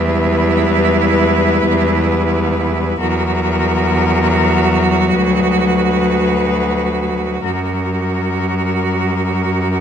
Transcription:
cello
Already playing: E2 G3 E4 B4
2.99 E2 F#3 F#4 A#4
5.13 D2 B4
7.43 F#2 F#3 F#4 A#4

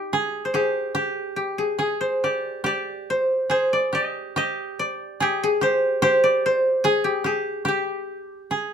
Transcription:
koto
Already playing: D#4 G4
0.13 G#4
0.45 C5
0.54 G4 G#4
0.95 G4
1.36 G4
1.58 G#4
1.78 G#4
2.01 C5
2.24 G4 D5
2.64 G4 D5
3.10 C5
3.50 G#4 C5
3.73 D5
3.93 G4 D#5
4.36 G4 D#5
4.79 D5
5.20 G4 G#4
5.43 G#4
5.61 G4 C5
6.02 G4 C5
6.24 D5
6.46 C5
6.84 G#4
7.04 G4
7.24 G4 G#4
7.65 G4
8.51 G#4

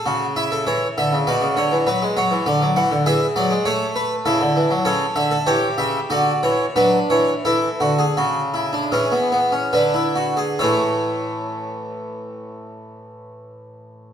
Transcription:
harpsichord
0.06 C#3 F#4
0.36 E4 E5
0.52 A4
0.67 E3 C#5
0.98 D3 E5
1.13 C#3
1.27 B2 F#4 D5
1.42 C#3
1.56 D3 C#5
1.72 E3
1.87 F#3 B4
2.02 G#3
2.17 F#3 C#5
2.31 E3
2.46 D3 D5
2.62 F#3
2.76 E3 F#5
2.91 D3
3.06 E3 G#4 E5
3.36 F#3 D5
3.50 G#3
3.65 A3 A4 C#5
3.96 B4
4.26 C#3 E4 A4
4.41 D3
4.56 E3
4.71 F#3
4.85 C#3 A4 C#5
5.16 D3 E5
5.31 A4
5.46 E3 G4 C#5
5.78 C#3 E5
6.10 D3 F#4 D5
6.43 E3 C#5
6.76 F#3 D4 B4
7.10 E3 C#5
7.45 E3 E4 A4
7.80 D3 F#4
7.98 G#4
8.17 C#3 F#4
8.54 E4
8.73 D4
8.92 E3 C#4 G#4
9.12 B3
9.32 B3
9.52 C#4
9.73 D3 D4 B4
9.94 E4
10.15 F#4
10.37 G#4
10.59 A2 E3 A3 A4 C#5

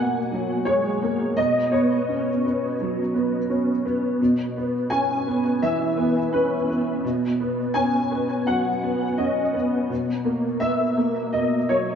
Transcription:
upright piano
Already playing: B2 A#3 B3 F#5 G#5
0.31 F#3
0.65 G#3 C#5
1.02 A#3
1.37 B2 D#5
1.72 B3 C#5
2.09 C#4
2.45 B3
2.80 F#3
3.14 B3
3.50 C#4
3.86 B3
4.21 B2
4.57 B3
4.90 C#4 G#5
5.27 B3
5.62 E3 E5
5.97 B3
6.33 C#4 B4
6.68 B3
7.04 B2
7.40 B3
7.74 C#4 G#5
8.11 B3
8.47 F#3 F#5
8.83 B3
9.18 C#4 D#5
9.53 B3
9.89 B2
10.24 A#3
10.60 B3 E5
10.97 A#3
11.33 B2 D#5
11.69 F#3 C#5

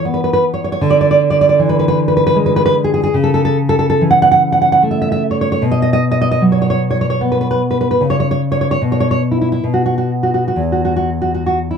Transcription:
nylon-string guitar
Already playing: E3
0.05 B3
0.14 B4
0.24 B4
0.33 B4
0.54 C#5
0.64 C#5
0.72 C#5
0.81 D3
0.90 D5
1.01 D5
1.11 D5
1.30 D5
1.41 D5
1.49 D5
1.59 E3
1.69 B4
1.79 B4
1.88 B4
2.08 B4
2.17 B4
2.27 B4
2.36 G#3
2.46 B4
2.56 B4
2.66 B4
2.84 G#4
2.94 G#4
3.04 G#4
3.14 C#3
3.24 A4
3.34 A4
3.45 A4
3.69 A4
3.79 A4
3.90 A4
4.01 E3
4.11 F#5
4.22 F#5
4.32 F#5
4.52 F#5
4.62 F#5
4.72 F#5
4.82 A3
4.91 E5
5.02 E5
5.12 E5
5.31 C#5
5.41 C#5
5.52 C#5
5.62 B2
5.71 D#5
5.82 D#5
5.93 D#5
6.11 D#5
6.21 D#5
6.31 D#5
6.41 F#3
6.52 C#5
6.62 C#5
6.70 C#5
6.91 C#5
7.01 C#5
7.10 C#5
7.21 B3
7.32 B4
7.41 B4
7.51 B4
7.71 B4
7.81 B4
7.91 B4
8.01 C#3
8.10 C#5
8.20 C#5
8.31 C#5
8.52 C#5
8.61 C#5
8.71 C#5
8.82 B2
8.92 C#5
9.00 C#5
9.11 C#5
9.31 E4
9.41 E4
9.52 E4
9.64 B2
9.74 F#4
9.86 F#4
9.98 F#4
10.23 F#4
10.34 F#4
10.48 F#4
10.56 E2
10.72 F#4
10.85 F#4
10.96 F#4
11.22 F#4
11.34 F#4
11.46 F#4
11.71 E4

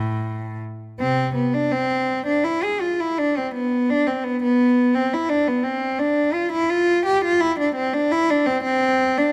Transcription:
cello
Already playing: A2
1.00 C3 C4
1.34 B3
1.54 D4
1.72 C4
2.26 D4
2.44 E4
2.63 G#4
2.80 F4
3.00 E4
3.18 D4
3.37 C4
3.54 B3
3.90 D4
4.07 C4
4.24 B3
4.42 B3
4.95 C4
5.14 E4
5.29 D4
5.48 B3
5.64 C4
5.99 D4
6.34 F4
6.52 E4
6.70 F4
7.06 G4
7.25 F4
7.40 E4
7.59 D4
7.75 C4
7.94 D4
8.11 E4
8.30 D4
8.46 C4
8.63 C4
9.18 D4

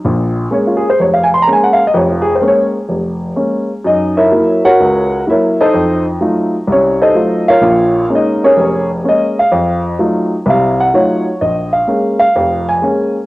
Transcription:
upright piano
0.04 A#1 A#2
0.51 G#3 A#3 C#4 C#5
0.67 F4
0.77 G#4
0.90 C5
0.99 F1 C#5
1.14 F5
1.24 G#5
1.34 C6
1.42 A#5
1.47 G#3 A#3 C#4
1.53 G#5
1.64 F#5
1.73 F5
1.87 D#5
1.94 F1 F2 C#5
2.11 F4
2.22 G#4
2.35 C5
2.41 G#3 A#3 C#4
2.48 C#5
2.89 F1
3.36 G#3 A#3 C#4
3.84 F#2 D#4 D#5
4.17 E4 A#4 C#5 E5
4.32 F#3 A#3 E4
4.65 F#4 A#4 C#5 F#5
4.80 C#2
5.27 F#3 A#3 E4 A#4 C#5 E5
5.61 D#4 A4 C5 D#5
5.74 F2
6.21 F#3 A3 D#4 F4
6.67 C2
6.72 C#4 C#5
7.02 D#4 A4 C5 D#5
7.15 F#3 A3 D#4 F4
7.48 F4 A#4 C#5 F5
7.61 A#1 A#2
8.09 G#3 A#3 C#4
8.15 D#4 D#5
8.44 C#4 G#4 A#4 C#5
8.56 F1
9.04 G#3 A#3 C#4
9.09 D#5
9.39 F5
9.52 F2
9.99 F#3 A3 D#4 F4
10.46 C2 C3 F5
10.80 F#5
10.94 F#3 A3 D#4 F4 C#5
11.41 A#1 D#5
11.73 F5
11.88 G#3 A#3 C#4
12.20 F5
12.36 F1 F2
12.69 G#5
12.82 G#3 A#3 C#4

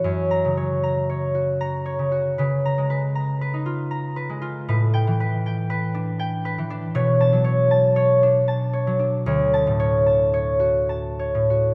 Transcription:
harp
Already playing: F#4
0.04 F#2 C#5
0.31 A#5
0.45 C#3
0.57 C#5
0.83 A#5
1.10 C#5
1.35 F#4
1.61 A#5
1.86 C#5
1.99 C#3
2.12 F#4
2.38 C#3 B4
2.65 A#5
2.78 G#3
2.90 B4
3.15 A#5
3.41 B4
3.54 D#4
3.66 F4
3.91 A#5
4.16 B4
4.29 G#3
4.42 F4
4.68 A2 B4
4.94 G5
5.07 E3
5.20 B4
5.46 G5
5.70 B4
5.95 D4
6.19 G5
6.45 B4
6.58 E3
6.70 D4
6.95 B2 C#5
7.21 A5
7.33 F#3
7.44 C#5
7.71 A5
7.96 C#5
8.23 D4
8.48 A5
8.73 C#5
8.87 F#3
8.99 D4
9.26 D2 C#5
9.54 A5
9.67 A2
9.80 C#5
10.06 A5
10.34 C#5
10.60 F#4
10.89 A5
11.19 C#5
11.35 A2
11.50 F#4

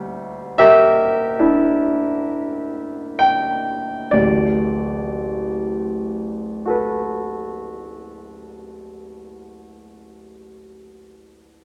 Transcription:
grand piano
Already playing: D2 G3 F#5
0.58 G4 A#4 E5
1.39 D4 E4
3.19 G5
4.11 D1 A1 D5
6.65 F#4 A4 B4

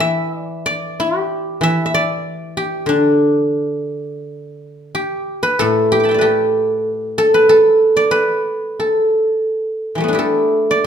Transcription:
guzheng
Already playing: E3 A4 G5
0.00 E5
0.39 D5
0.66 D5
1.00 G4
1.61 E3 E5
1.86 E5
1.94 D5
2.57 G4
2.86 D3 D4
4.95 G4
5.43 B4
5.59 A2 A4
5.92 G4
6.00 B5 D6
6.05 G5 A5
6.11 D5 E5
6.19 G4 A4 B4
7.18 A4
7.34 B4
7.49 A4
7.97 D5
8.11 B4
8.80 A4
9.95 E3 G3
10.00 A3 B3
10.08 D4
10.13 E4 G4
10.19 A4
10.71 D5

